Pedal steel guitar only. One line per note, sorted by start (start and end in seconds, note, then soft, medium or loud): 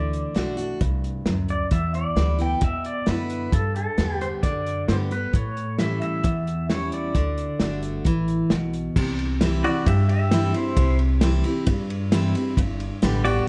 0.00 0.56 D5 medium
1.50 1.71 D5 medium
1.72 1.95 E5 medium
1.95 2.41 D5 medium
2.42 2.62 G5 loud
2.64 2.86 E5 medium
2.86 3.09 D5 medium
3.09 3.53 B4 medium
3.53 3.75 A4 medium
3.76 4.21 A4 medium
4.22 4.28 C5 medium
4.43 4.90 D5 medium
4.88 4.94 C5 medium
5.12 5.35 B4 medium
5.36 5.79 C#5 medium
5.79 6.00 E5 medium
6.02 6.66 E5 loud
6.70 6.93 C#5 medium
6.94 7.80 D5 medium
9.64 9.85 F#4 medium
9.64 9.85 D5 medium
9.86 10.07 G4 medium
9.86 10.09 E5 loud
10.09 10.51 G4 medium
10.09 10.56 E5 loud
10.55 10.96 E4 medium
10.55 10.97 C5 medium
13.25 13.46 F#4 medium
13.25 13.47 D5 loud